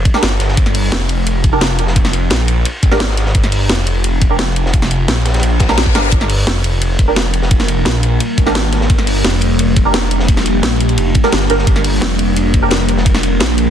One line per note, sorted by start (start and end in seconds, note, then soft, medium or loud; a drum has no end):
0.05 kick loud
0.05 closed hi-hat medium
0.05 ride medium
0.14 0.21 D4 medium
0.14 0.21 G4 medium
0.14 0.21 A#4 medium
0.14 snare soft
0.23 0.39 G1 loud
0.23 snare loud
0.23 closed hi-hat medium
0.23 ride medium
0.31 snare soft
0.40 0.56 G1 medium
0.40 snare soft
0.40 closed hi-hat medium
0.40 ride medium
0.48 snare medium
0.57 0.91 G1 loud
0.57 kick loud
0.57 closed hi-hat medium
0.57 ride medium
0.66 snare soft
0.66 closed hi-hat soft
0.66 ride soft
0.75 closed hi-hat medium
0.75 open hi-hat medium
0.92 2.29 F1 loud
0.92 snare loud
0.92 closed hi-hat medium
0.92 ride medium
1.09 closed hi-hat medium
1.09 ride medium
1.27 closed hi-hat medium
1.27 ride medium
1.44 kick loud
1.44 closed hi-hat medium
1.44 ride medium
1.53 1.60 D4 medium
1.53 1.60 G4 medium
1.53 1.60 A#4 medium
1.61 snare loud
1.61 closed hi-hat medium
1.61 ride medium
1.79 closed hi-hat medium
1.79 ride medium
1.87 snare medium
1.96 kick loud
1.96 closed hi-hat medium
1.96 ride medium
2.05 snare soft
2.05 closed hi-hat soft
2.13 closed hi-hat medium
2.13 ride medium
2.30 2.64 A#1 loud
2.30 snare loud
2.30 closed hi-hat medium
2.30 ride medium
2.48 closed hi-hat medium
2.48 ride medium
2.65 closed hi-hat medium
2.65 ride loud
2.83 3.33 G#1 loud
2.83 kick loud
2.83 closed hi-hat medium
2.83 ride medium
2.91 2.99 D4 medium
2.91 2.99 G4 medium
2.91 2.99 A#4 medium
2.91 snare soft
3.00 snare loud
3.00 closed hi-hat medium
3.00 ride medium
3.09 snare soft
3.17 snare medium
3.17 closed hi-hat medium
3.17 ride medium
3.26 snare medium
3.35 3.68 G1 loud
3.35 kick loud
3.35 closed hi-hat medium
3.35 ride medium
3.44 snare soft
3.44 closed hi-hat soft
3.44 ride soft
3.52 closed hi-hat medium
3.52 open hi-hat medium
3.69 5.07 F1 loud
3.69 snare loud
3.69 closed hi-hat loud
3.69 ride medium
3.87 closed hi-hat medium
3.87 ride medium
4.04 closed hi-hat loud
4.04 ride medium
4.22 kick loud
4.22 closed hi-hat medium
4.22 ride medium
4.30 4.38 D4 medium
4.30 4.38 G4 medium
4.30 4.38 A#4 medium
4.39 snare loud
4.39 closed hi-hat medium
4.39 ride medium
4.56 closed hi-hat medium
4.56 ride medium
4.66 snare medium
4.73 kick loud
4.73 closed hi-hat loud
4.73 ride medium
4.82 snare soft
4.82 closed hi-hat soft
4.91 closed hi-hat medium
4.91 ride medium
5.08 5.42 A#1 loud
5.08 snare loud
5.08 closed hi-hat loud
5.08 ride medium
5.25 snare loud
5.25 closed hi-hat medium
5.25 ride medium
5.34 snare medium
5.34 closed hi-hat soft
5.34 ride medium
5.39 5.94 A#1 loud
5.39 snare medium
5.39 closed hi-hat loud
5.39 ride medium
5.39 reverse cymbal medium
5.43 ride medium
5.60 kick loud
5.60 snare loud
5.60 closed hi-hat medium
5.60 ride medium
5.69 5.76 D4 medium
5.69 5.76 G4 medium
5.69 5.76 A#4 loud
5.69 snare loud
5.69 snare medium
5.69 ride medium
5.77 snare loud
5.77 closed hi-hat loud
5.77 ride medium
5.86 kick medium
5.95 6.11 G1 medium
5.95 6.02 D4 medium
5.95 6.02 G4 medium
5.95 6.02 A#4 loud
5.95 snare loud
5.95 snare medium
5.95 closed hi-hat medium
5.95 ride medium
6.12 6.46 G1 loud
6.12 13.70 G3 medium
6.12 13.70 A#3 medium
6.12 13.70 D4 medium
6.12 8.89 A#4 medium
6.12 kick loud
6.12 closed hi-hat loud
6.12 ride medium
6.20 snare medium
6.20 closed hi-hat soft
6.20 ride soft
6.30 closed hi-hat medium
6.30 open hi-hat medium
6.47 7.84 F1 medium
6.47 snare loud
6.47 closed hi-hat loud
6.47 ride loud
6.64 closed hi-hat medium
6.64 ride medium
6.81 closed hi-hat loud
6.81 ride medium
6.99 kick loud
6.99 closed hi-hat medium
6.99 ride medium
7.08 7.15 D4 medium
7.08 7.15 G4 medium
7.08 7.15 A#4 medium
7.16 snare loud
7.16 closed hi-hat medium
7.16 ride medium
7.34 closed hi-hat medium
7.34 ride medium
7.42 snare medium
7.51 kick loud
7.51 closed hi-hat medium
7.51 ride medium
7.60 snare soft
7.60 snare medium
7.60 closed hi-hat soft
7.68 closed hi-hat medium
7.68 ride medium
7.85 8.19 A#1 loud
7.85 snare loud
7.85 closed hi-hat loud
7.85 ride medium
8.03 closed hi-hat medium
8.03 ride medium
8.20 closed hi-hat medium
8.20 ride medium
8.38 8.88 G#1 loud
8.38 kick loud
8.38 closed hi-hat medium
8.38 ride medium
8.46 8.54 D4 medium
8.46 8.54 G4 medium
8.46 8.54 A#4 medium
8.46 snare soft
8.55 snare loud
8.55 closed hi-hat medium
8.55 ride medium
8.64 snare soft
8.72 snare soft
8.72 closed hi-hat medium
8.72 ride medium
8.81 snare medium
8.90 9.23 G1 loud
8.90 11.66 G4 medium
8.90 kick loud
8.90 closed hi-hat medium
8.90 ride loud
8.98 snare soft
8.98 closed hi-hat soft
8.98 ride soft
9.07 closed hi-hat medium
9.07 open hi-hat medium
9.24 10.62 F1 loud
9.24 snare loud
9.24 closed hi-hat medium
9.24 ride medium
9.41 closed hi-hat medium
9.41 ride medium
9.59 closed hi-hat medium
9.59 ride medium
9.77 kick loud
9.77 closed hi-hat medium
9.77 ride medium
9.85 9.92 D4 medium
9.85 9.92 G4 medium
9.85 9.92 A#4 medium
9.94 snare loud
9.94 closed hi-hat medium
9.94 ride medium
10.11 closed hi-hat medium
10.11 ride medium
10.20 snare medium
10.28 kick loud
10.28 closed hi-hat medium
10.28 ride loud
10.37 snare soft
10.37 closed hi-hat soft
10.46 closed hi-hat medium
10.46 ride medium
10.63 10.96 A#1 loud
10.63 snare loud
10.63 closed hi-hat medium
10.63 ride medium
10.80 closed hi-hat medium
10.80 ride medium
10.89 closed hi-hat soft
10.98 11.14 F1 loud
10.98 closed hi-hat medium
10.98 ride loud
11.15 kick loud
11.15 closed hi-hat medium
11.15 ride medium
11.24 11.31 D4 medium
11.24 11.31 G4 medium
11.24 11.31 A#4 medium
11.24 snare soft
11.33 11.48 G1 loud
11.33 snare loud
11.33 closed hi-hat medium
11.33 ride medium
11.41 snare soft
11.50 11.66 G1 medium
11.50 11.57 D4 medium
11.50 11.57 G4 medium
11.50 11.57 A#4 loud
11.50 snare soft
11.50 closed hi-hat medium
11.50 ride medium
11.59 snare medium
11.67 12.01 G1 loud
11.67 13.70 A#4 loud
11.67 kick loud
11.67 closed hi-hat medium
11.67 ride medium
11.76 snare soft
11.76 closed hi-hat soft
11.76 ride soft
11.85 closed hi-hat medium
11.85 open hi-hat medium
12.01 13.39 F1 loud
12.01 snare loud
12.01 closed hi-hat medium
12.01 ride medium
12.19 closed hi-hat medium
12.19 ride medium
12.37 closed hi-hat medium
12.37 ride medium
12.54 kick loud
12.54 closed hi-hat medium
12.54 ride medium
12.63 12.70 D4 medium
12.63 12.70 G4 medium
12.63 12.70 A#4 medium
12.71 snare loud
12.71 closed hi-hat medium
12.71 ride medium
12.89 closed hi-hat medium
12.89 ride medium
12.97 snare medium
13.06 kick loud
13.06 closed hi-hat medium
13.06 ride medium
13.15 snare soft
13.15 closed hi-hat soft
13.23 closed hi-hat medium
13.23 ride medium
13.40 13.70 A#1 medium
13.40 snare loud
13.40 closed hi-hat medium
13.40 ride medium
13.58 closed hi-hat medium
13.58 ride medium